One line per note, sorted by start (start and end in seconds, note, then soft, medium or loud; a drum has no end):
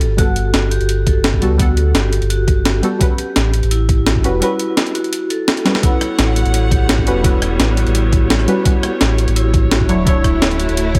0.00 0.52 G1 medium
0.00 0.18 F#4 loud
0.00 0.71 G4 medium
0.00 1.06 A4 medium
0.00 closed hi-hat medium
0.17 1.39 G3 medium
0.17 1.40 B3 medium
0.17 0.34 F#4 loud
0.17 1.41 A4 medium
0.17 1.40 F#5 medium
0.17 kick loud
0.17 closed hi-hat medium
0.36 closed hi-hat medium
0.54 0.79 G1 medium
0.54 snare loud
0.54 closed hi-hat medium
0.71 0.88 G4 medium
0.71 closed hi-hat medium
0.80 1.43 G1 medium
0.80 closed hi-hat soft
0.89 closed hi-hat medium
1.06 1.22 A4 medium
1.06 kick loud
1.06 closed hi-hat medium
1.24 snare loud
1.24 closed hi-hat medium
1.34 kick medium
1.41 1.93 D2 medium
1.41 1.56 G3 medium
1.41 1.57 B3 medium
1.41 1.58 F#4 medium
1.41 1.58 A4 medium
1.41 closed hi-hat medium
1.58 2.80 G3 medium
1.58 2.81 B3 medium
1.58 1.69 F#4 medium
1.58 2.82 A4 medium
1.58 2.81 F#5 medium
1.58 kick loud
1.58 closed hi-hat medium
1.77 closed hi-hat medium
1.95 2.20 G1 medium
1.95 2.11 G4 medium
1.95 snare loud
1.95 closed hi-hat medium
2.13 closed hi-hat medium
2.22 2.82 G1 medium
2.22 closed hi-hat soft
2.30 2.46 F#4 loud
2.30 closed hi-hat medium
2.48 kick loud
2.48 closed hi-hat medium
2.65 snare loud
2.65 closed hi-hat medium
2.82 2.98 G3 medium
2.82 2.99 B3 medium
2.82 2.99 F#4 medium
2.82 3.00 G4 medium
2.82 2.99 A4 medium
2.82 closed hi-hat medium
2.99 4.21 G3 medium
2.99 4.22 C#4 medium
2.99 4.23 B4 medium
2.99 4.22 F#5 medium
2.99 kick loud
2.99 closed hi-hat medium
3.18 3.34 G4 medium
3.18 closed hi-hat medium
3.36 3.61 A1 loud
3.36 snare loud
3.36 closed hi-hat medium
3.54 closed hi-hat medium
3.63 4.26 A1 medium
3.63 closed hi-hat soft
3.71 3.81 E4 medium
3.71 closed hi-hat medium
3.89 kick loud
3.89 closed hi-hat medium
4.06 4.23 F#4 medium
4.06 snare loud
4.06 closed hi-hat medium
4.16 kick medium
4.23 4.42 E1 medium
4.23 4.39 G3 medium
4.23 4.40 C#4 medium
4.23 4.40 F#4 medium
4.23 4.40 B4 medium
4.23 closed hi-hat medium
4.40 5.62 G3 medium
4.40 5.63 C#4 medium
4.40 4.58 E4 medium
4.40 5.64 F#4 medium
4.40 5.64 B4 loud
4.40 closed hi-hat loud
4.59 closed hi-hat medium
4.77 snare loud
4.77 closed hi-hat medium
4.86 closed hi-hat soft
4.95 5.12 F#4 medium
4.95 closed hi-hat medium
5.04 closed hi-hat soft
5.13 closed hi-hat loud
5.30 5.47 A4 medium
5.30 closed hi-hat medium
5.48 snare loud
5.48 closed hi-hat medium
5.57 closed hi-hat soft
5.65 5.80 G3 medium
5.65 5.81 C#4 medium
5.65 5.81 F#4 medium
5.65 5.82 B4 medium
5.65 snare medium
5.65 closed hi-hat medium
5.75 snare medium
5.81 7.04 G3 medium
5.81 9.85 G3 medium
5.81 9.85 B3 medium
5.81 7.04 C#4 medium
5.81 5.99 E4 loud
5.81 7.06 B4 medium
5.81 10.99 C#5 medium
5.81 7.93 F#5 medium
5.81 7.05 F#5 medium
5.81 kick loud
5.81 closed hi-hat medium
6.01 cross-stick soft
6.01 closed hi-hat medium
6.18 6.44 A1 medium
6.18 snare loud
6.18 closed hi-hat medium
6.36 6.53 F#4 medium
6.36 closed hi-hat medium
6.45 7.08 A1 medium
6.45 closed hi-hat soft
6.54 closed hi-hat loud
6.71 6.87 G4 medium
6.71 kick loud
6.71 closed hi-hat medium
6.89 snare loud
6.89 closed hi-hat medium
6.98 kick medium
7.06 7.58 E1 medium
7.06 7.21 G3 medium
7.06 7.22 C#4 medium
7.06 7.22 F#4 medium
7.06 7.23 B4 medium
7.06 closed hi-hat medium
7.22 8.45 G3 medium
7.22 8.45 C#4 medium
7.22 7.34 E4 medium
7.22 8.46 F#4 medium
7.22 8.47 B4 loud
7.22 kick loud
7.22 closed hi-hat medium
7.42 cross-stick medium
7.42 closed hi-hat medium
7.59 7.85 A1 loud
7.59 7.75 F#4 medium
7.59 snare loud
7.59 closed hi-hat medium
7.77 closed hi-hat medium
7.86 8.46 A1 medium
7.86 closed hi-hat soft
7.95 8.11 E4 loud
7.95 closed hi-hat loud
8.12 kick loud
8.12 closed hi-hat medium
8.30 snare loud
8.30 closed hi-hat medium
8.40 cross-stick soft
8.47 8.63 G3 medium
8.47 8.63 C#4 medium
8.47 8.64 F#4 medium
8.47 8.64 B4 medium
8.47 closed hi-hat medium
8.64 9.86 G3 medium
8.64 9.87 C#4 medium
8.64 9.88 B4 medium
8.64 9.87 F#5 medium
8.64 kick loud
8.64 closed hi-hat medium
8.83 8.99 G4 medium
8.83 cross-stick soft
8.83 closed hi-hat medium
9.01 9.26 A1 medium
9.01 snare loud
9.01 closed hi-hat medium
9.18 closed hi-hat medium
9.28 9.90 A1 medium
9.28 closed hi-hat soft
9.36 9.46 E4 medium
9.36 closed hi-hat medium
9.54 kick loud
9.54 closed hi-hat medium
9.71 9.87 F#4 medium
9.71 snare loud
9.71 closed hi-hat medium
9.81 kick medium
9.88 10.41 D1 medium
9.88 10.03 F#3 medium
9.88 10.99 F#3 medium
9.88 10.99 A3 medium
9.88 10.04 D4 medium
9.88 10.99 E4 medium
9.88 10.05 E4 medium
9.88 10.05 C#5 medium
9.88 closed hi-hat medium
10.05 10.99 F#3 medium
10.05 10.99 D4 medium
10.05 10.23 E4 loud
10.05 10.99 E4 medium
10.05 10.99 C#5 loud
10.05 kick loud
10.05 closed hi-hat medium
10.24 kick medium
10.24 cross-stick soft
10.24 closed hi-hat medium
10.42 10.67 D1 medium
10.42 snare loud
10.42 closed hi-hat medium
10.51 closed hi-hat soft
10.59 10.76 F#4 medium
10.59 closed hi-hat medium
10.69 10.99 D1 medium
10.69 closed hi-hat soft
10.77 closed hi-hat medium
10.95 10.99 C#5 medium
10.95 kick loud
10.95 closed hi-hat medium